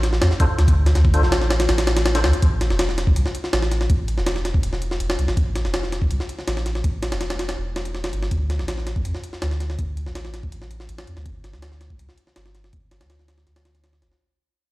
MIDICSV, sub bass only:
0, 0, Header, 1, 2, 480
1, 0, Start_track
1, 0, Key_signature, 0, "minor"
1, 0, Tempo, 368098
1, 1243, Time_signature, 4, 2, 24, 8
1, 19188, End_track
2, 0, Start_track
2, 0, Title_t, "Sub bass"
2, 0, Program_c, 0, 38
2, 0, Note_on_c, 0, 33, 83
2, 265, Note_off_c, 0, 33, 0
2, 285, Note_on_c, 0, 41, 89
2, 394, Note_off_c, 0, 41, 0
2, 763, Note_on_c, 0, 38, 86
2, 1224, Note_off_c, 0, 38, 0
2, 1243, Note_on_c, 0, 38, 99
2, 1609, Note_on_c, 0, 33, 81
2, 1628, Note_off_c, 0, 38, 0
2, 2185, Note_off_c, 0, 33, 0
2, 2203, Note_on_c, 0, 33, 77
2, 2922, Note_on_c, 0, 38, 101
2, 2942, Note_off_c, 0, 33, 0
2, 3033, Note_off_c, 0, 38, 0
2, 3161, Note_on_c, 0, 33, 95
2, 3524, Note_on_c, 0, 28, 84
2, 3543, Note_off_c, 0, 33, 0
2, 4103, Note_off_c, 0, 28, 0
2, 4121, Note_on_c, 0, 36, 87
2, 4232, Note_off_c, 0, 36, 0
2, 4600, Note_on_c, 0, 33, 84
2, 5062, Note_off_c, 0, 33, 0
2, 5081, Note_on_c, 0, 33, 94
2, 5446, Note_on_c, 0, 28, 84
2, 5465, Note_off_c, 0, 33, 0
2, 6024, Note_off_c, 0, 28, 0
2, 6041, Note_on_c, 0, 28, 75
2, 6514, Note_off_c, 0, 28, 0
2, 6522, Note_on_c, 0, 28, 84
2, 6739, Note_off_c, 0, 28, 0
2, 6762, Note_on_c, 0, 36, 89
2, 6872, Note_off_c, 0, 36, 0
2, 6885, Note_on_c, 0, 33, 91
2, 6990, Note_off_c, 0, 33, 0
2, 7003, Note_on_c, 0, 33, 93
2, 7365, Note_on_c, 0, 28, 83
2, 7385, Note_off_c, 0, 33, 0
2, 7943, Note_off_c, 0, 28, 0
2, 7961, Note_on_c, 0, 36, 87
2, 8072, Note_off_c, 0, 36, 0
2, 8440, Note_on_c, 0, 33, 84
2, 8902, Note_off_c, 0, 33, 0
2, 8922, Note_on_c, 0, 33, 94
2, 9283, Note_on_c, 0, 28, 84
2, 9303, Note_off_c, 0, 33, 0
2, 9863, Note_off_c, 0, 28, 0
2, 9880, Note_on_c, 0, 28, 78
2, 10593, Note_off_c, 0, 28, 0
2, 10600, Note_on_c, 0, 31, 92
2, 10818, Note_off_c, 0, 31, 0
2, 10841, Note_on_c, 0, 38, 94
2, 11204, Note_on_c, 0, 33, 82
2, 11224, Note_off_c, 0, 38, 0
2, 11783, Note_off_c, 0, 33, 0
2, 11802, Note_on_c, 0, 41, 87
2, 11913, Note_off_c, 0, 41, 0
2, 12284, Note_on_c, 0, 38, 82
2, 12744, Note_off_c, 0, 38, 0
2, 12763, Note_on_c, 0, 38, 95
2, 13126, Note_on_c, 0, 33, 82
2, 13145, Note_off_c, 0, 38, 0
2, 13704, Note_off_c, 0, 33, 0
2, 13722, Note_on_c, 0, 33, 77
2, 14193, Note_off_c, 0, 33, 0
2, 14201, Note_on_c, 0, 33, 81
2, 14418, Note_off_c, 0, 33, 0
2, 14442, Note_on_c, 0, 41, 89
2, 14553, Note_off_c, 0, 41, 0
2, 14562, Note_on_c, 0, 38, 92
2, 14669, Note_off_c, 0, 38, 0
2, 14679, Note_on_c, 0, 31, 94
2, 15043, Note_on_c, 0, 38, 83
2, 15063, Note_off_c, 0, 31, 0
2, 15623, Note_off_c, 0, 38, 0
2, 15641, Note_on_c, 0, 36, 84
2, 15752, Note_off_c, 0, 36, 0
2, 16121, Note_on_c, 0, 31, 85
2, 16583, Note_off_c, 0, 31, 0
2, 16601, Note_on_c, 0, 31, 93
2, 16967, Note_on_c, 0, 38, 81
2, 16987, Note_off_c, 0, 31, 0
2, 17545, Note_off_c, 0, 38, 0
2, 17566, Note_on_c, 0, 38, 78
2, 18284, Note_on_c, 0, 31, 98
2, 18304, Note_off_c, 0, 38, 0
2, 18394, Note_off_c, 0, 31, 0
2, 19188, End_track
0, 0, End_of_file